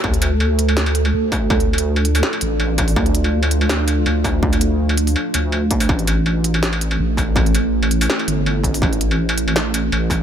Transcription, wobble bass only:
X:1
M:4/4
L:1/8
Q:"Swing 16ths" 1/4=164
K:Dm
V:1 name="Wobble bass" clef=bass
D,,6 D,,2- | D,,4 z A,,,3 | D,,6 D,,2- | D,,4 z D,,3 |
A,,,6 A,,,2- | A,,,4 z G,,,3 | A,,,6 A,,,2 |]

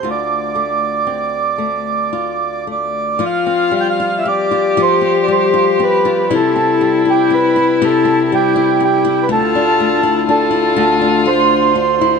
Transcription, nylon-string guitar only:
X:1
M:3/4
L:1/16
Q:1/4=59
K:Ddor
V:1 name="Nylon-string guitar"
[D,,F]2 A,2 C2 A,2 F2 A,2 | [F,F] C G, F C F [F,F] C G, F C F | [C,E] C G, E C E [C,E] C G, E C E | D,, D A, E D E D,, D A,2 D E |]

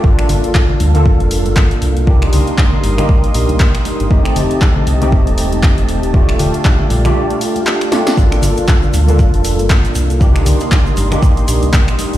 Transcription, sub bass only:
X:1
M:4/4
L:1/16
Q:"Swing 16ths" 1/4=118
K:Gm
V:1 name="Sub bass" clef=bass
G,,, z G,,, z3 D,,2 F,,,3 G,,,3 C,,2- | C,,2 C,, z3 G,,,2 z2 B,,, C,, z3 G,,, | F,,, z F,,, z3 C,,2 E,,,3 F,,,3 E,,,2- | E,,,2 E,,, z3 B,,,2 z8 |
G,,, z G,,, z3 D,,2 F,,,3 G,,,3 C,,2- | C,,2 C,, z3 G,,,2 z2 B,,, C,, z3 G,,, |]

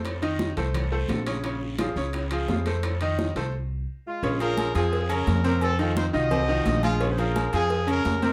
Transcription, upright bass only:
X:1
M:4/4
L:1/8
Q:1/4=173
K:Bbm
V:1 name="Upright bass" clef=bass
F,,3 C,,3 B,,,2- | B,,,3 D,,3 F,,2- | F,,3 C,,3 z2 | B,,,3 F,,3 F,,2- |
F,,3 C,,3 B,,,2- | B,,,3 F,,3 F,,2 |]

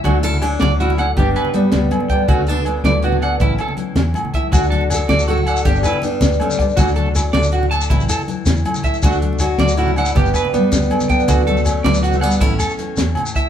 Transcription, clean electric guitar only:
X:1
M:12/8
L:1/8
Q:3/8=107
K:D
V:1 name="Clean electric guitar"
F A z d F f G B z3 g | F A z d F f E A z3 e | F A z d F f G B z4 | F A z d F a E A z3 e |
F z2 d F f G B z3 g | F A z d F f E A z3 e |]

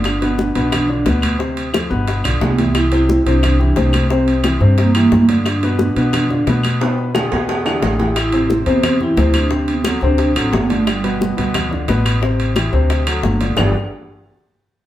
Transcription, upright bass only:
X:1
M:4/4
L:1/8
Q:1/4=177
K:Gmix
V:1 name="Upright bass" clef=bass
G,,,3 B,,,3 D,,2- | D,,3 G,,,2 B,,, C,,2- | C,,3 C,,3 C,,2- | C,,3 G,,3 G,,2- |
G,,3 B,,3 B,,2- | B,,3 E,,3 A,,,2- | A,,,3 E,,3 D,,2- | D,,3 D,,2 A,,, G,,,2- |
G,,,3 D,,3 A,,,2- | A,,,3 D,,3 G,,,2 | G,,, z6 z |]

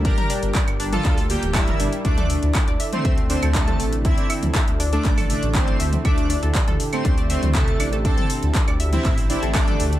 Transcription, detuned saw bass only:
X:1
M:4/4
L:1/16
Q:1/4=120
K:Gdor
V:1 name="Detuned saw bass" clef=bass
G,,, z2 G,,, z G,,,2 z D,,2 z D,,,2 z G,,, z | D,,2 z D,, z D,, z2 D,,2 z D,,2 z A,,,2 | D,, z2 D,, z D,,2 z A,,,2 z A,,,2 z D,, z | D,,2 z D,, z D,, z2 D,,2 z D,,2 z A,,,2 |
D,, z2 D,, z D,,2 z A,,,2 z A,,,2 z D,, z |]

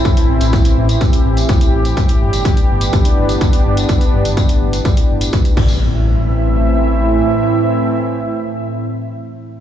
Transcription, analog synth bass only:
X:1
M:4/4
L:1/16
Q:1/4=125
K:Am
V:1 name="Analog synth bass" clef=bass
z2 A,,, A,,,2 z A,,,2 z2 A,,,2 z2 A,,,2 | z2 G,,, G,,,2 z G,,,2 z2 G,,,2 z2 G,,,2 | z2 G,,, G,,,2 z G,,,2 z2 G,,,2 z2 A,,,2- | A,,,12 z4 |
z16 |]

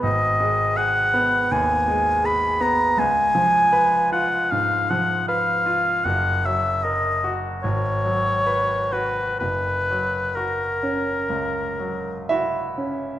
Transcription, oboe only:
X:1
M:4/4
L:1/8
Q:1/4=76
K:F#mix
V:1 name="Oboe"
d2 f2 g2 b a | g3 f ^e f e2 | f e d z c3 B | B2 A4 z2 |]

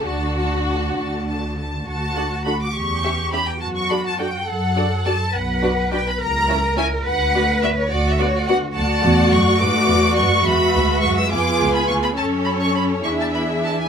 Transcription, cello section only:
X:1
M:6/8
L:1/8
Q:3/8=70
K:D
V:1 name="Cello section"
D,3 D,3 | F3 G3 | F3 A3 | B3 ^A3 |
B3 F3 | [K:Bdor] F6- | F3 ^E3 | C3 E3 |]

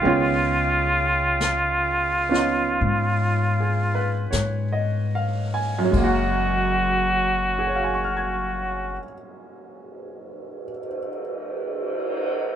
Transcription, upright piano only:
X:1
M:4/4
L:1/16
Q:"Swing" 1/4=36
K:F#
V:1 name="Upright piano"
z8 z2 G B c d e g | z4 [Gcegc'e'g']12 |]
V:2 name="Upright piano"
[D,G,B,CE]6 [B,CDE]8- [B,CDE]2 | [F,,F,G,A,F]16 |]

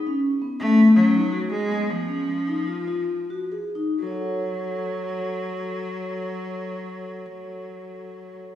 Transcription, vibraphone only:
X:1
M:5/4
L:1/8
Q:1/4=132
K:F#dor
V:1 name="Vibraphone"
C2 B, C B, C D F G B,- | B, C2 D ^E E2 F G D | [FAcf]8- [FAcf]2- | [FAcf]8- [FAcf]2 |]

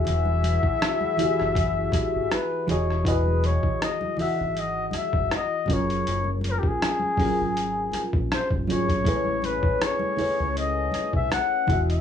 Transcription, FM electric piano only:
X:1
M:4/4
L:1/8
Q:"Swing 16ths" 1/4=80
K:E
V:1 name="FM electric piano"
[E,EFGe]3 [E,EF=G^Ge]4 [E,EFGd] | [E,EFGd]3 [E,EFGf]4 [F,C^EG^A]- | [F,C^EG^A]3 [F,CEGA]4 [F,CEGc] | [A,EGBc]3 [A,EGBc]4 [E,EFGe] |]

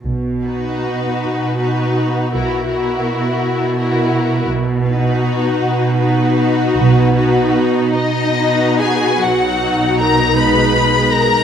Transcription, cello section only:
X:1
M:6/8
L:1/8
Q:3/8=53
K:B
V:1 name="Cello section" clef=bass
B,,3 B,,3 | B,,3 B,,3 | B,,3 B,,3 | B,,3 B,,3 |
B,,6 |]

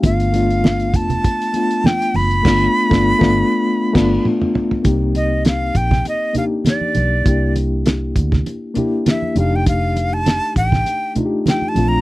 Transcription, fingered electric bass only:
X:1
M:4/4
L:1/16
Q:"Swing 16ths" 1/4=100
K:Gm
V:1 name="Fingered electric bass" clef=bass
G,,,6 F,,,2 z6 ^F,,,2 | G,,,2 z G,,,2 G,,,2 z3 G,,,2 z4 | C,,6 B,,,2 z6 =B,,,2 | C,,6 D,,2 z6 F,,,2- |
F,,,6 A,,,2 z6 B,,,2 |]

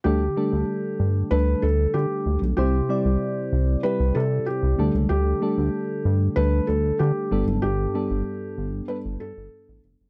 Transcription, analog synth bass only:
X:1
M:4/4
L:1/16
Q:1/4=95
K:G
V:1 name="Analog synth bass" clef=bass
D,,2 z D,, z2 G,,2 D,,2 D,,2 D, z D,, B,,, | C,,2 z C,, z2 C,,2 z C,, C,2 z C,, D,, ^C,, | D,,2 z D,, z2 G,,2 D,,2 D,,2 D, z G,,, F,,, | G,,,2 z G,,, z2 G,,,2 z G,,, G,, G,,, z A,,, =F,,, ^F,,, |]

